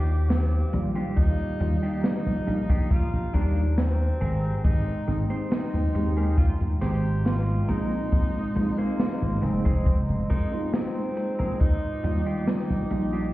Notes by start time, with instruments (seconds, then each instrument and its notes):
Already playing: slap bass D#2, tenor saxophone G4, ambient pad G4 F5 D6
0.08 closed hi-hat
0.30 tenor saxophone C4, snare, closed hi-hat
0.53 closed hi-hat
0.73 slap bass A#1, tine electric piano D#3 G3 A#3 F4 D5, muted clean electric guitar stroke, closed hi-hat
0.95 clean electric guitar D4 D#4 F4 G4, closed hi-hat
1.17 slap bass D#2, tenor saxophone D#4, ambient pad A#5, kick, closed hi-hat
1.39 closed hi-hat
1.60 slap bass D#2, tine electric piano D#3 G3 A#3 F4 D5, muted clean electric guitar stroke, closed hi-hat
1.83 clean electric guitar D4 D#4 F4 G4, closed hi-hat
2.04 tenor saxophone D#4, snare, closed hi-hat
2.26 slap bass A#1, closed hi-hat
2.47 slap bass A#1, tine electric piano G3 A#3 D4 D#4 A#4, muted clean electric guitar stroke, closed hi-hat
2.69 clean electric guitar D4 D#4 F4 G4, kick, closed hi-hat
2.91 tenor saxophone F4, kick, closed hi-hat
3.13 slap bass A#1, closed hi-hat
3.33 slap bass D#2, tine electric piano G3 A#3 D4 D#4 G4, tenor saxophone D4, clean electric guitar D4 D#4 F4 A#4, kick, closed hi-hat
3.57 closed hi-hat
3.77 tenor saxophone C4, snare, closed hi-hat
4.00 closed hi-hat
4.21 slap bass G#1, ambient pad G#3 G5 A#5 C6, clean electric guitar C4 G4 G#4 A#4, closed hi-hat
4.44 closed hi-hat
4.64 slap bass G#1, tenor saxophone D#4, kick, closed hi-hat
4.88 closed hi-hat
5.07 slap bass G#1, tine electric piano G#3 A#3 C4 D#4 G5, muted clean electric guitar stroke, closed hi-hat
5.30 clean electric guitar C4 G4 G#4 C5, closed hi-hat
5.51 tenor saxophone D#4, snare, closed hi-hat
5.74 slap bass D#2, closed hi-hat
5.94 slap bass D#2, tine electric piano G#3 A#3 C4 D#4 G4, muted clean electric guitar stroke, closed hi-hat
6.17 clean electric guitar C4 G4 G#4 A#4, closed hi-hat
6.38 tenor saxophone F4, kick, closed hi-hat
6.60 slap bass D#2, closed hi-hat
6.81 slap bass G#1, clean electric guitar C4 G4 G#4 C5, tenor saxophone G4, snare, closed hi-hat
7.05 closed hi-hat
7.25 tenor saxophone F4, snare, closed hi-hat
7.47 closed hi-hat
7.68 slap bass A#1, tine electric piano G#3 A#3 C4 D#4 F4, clean electric guitar C4 D#4 G#4 A#4, tenor saxophone D#4, ambient pad D#5, closed hi-hat
7.91 closed hi-hat
8.12 slap bass A#1, kick, closed hi-hat
8.35 closed hi-hat
8.55 slap bass A#1, tine electric piano G#3 A#3 C4 D#4 F4, muted clean electric guitar stroke, closed hi-hat
8.78 tenor saxophone A#3, clean electric guitar C4 D#4 G#4 C5, closed hi-hat
9.00 snare, closed hi-hat
9.22 slap bass G#1, closed hi-hat
9.42 slap bass F1, tine electric piano G#3 A#3 C4 D#4 G#4, tenor saxophone C4, muted clean electric guitar stroke, closed hi-hat
9.65 clean electric guitar C4 D#4 G#4 C5, kick, closed hi-hat
9.86 kick, closed hi-hat
10.09 slap bass F1, closed hi-hat
10.30 slap bass F2, clean electric guitar C4 D#4 G#4 A#4, tenor saxophone D#4, kick, closed hi-hat
10.51 tine electric piano G#3 A#3 C4 D#4 F4, closed hi-hat
10.73 tenor saxophone C4, snare, closed hi-hat
10.95 closed hi-hat
11.17 muted clean electric guitar stroke, closed hi-hat
11.39 slap bass A#1, clean electric guitar C4 D#4 G#4 A#4, closed hi-hat
11.60 slap bass D#2, tenor saxophone D#4, ambient pad F4 G5 D6, kick, closed hi-hat
11.84 closed hi-hat
12.03 slap bass D#2, tine electric piano D#3 G3 A#3 F4 D5, muted clean electric guitar stroke, closed hi-hat
12.26 clean electric guitar D4 D#4 F4 G4, closed hi-hat
12.47 tenor saxophone D#4, snare, closed hi-hat
12.70 slap bass A#1, closed hi-hat
12.90 slap bass A#1, tine electric piano G3 A#3 D4 D#4 F4, muted clean electric guitar stroke, closed hi-hat
13.13 clean electric guitar D4 D#4 F4 G4, closed hi-hat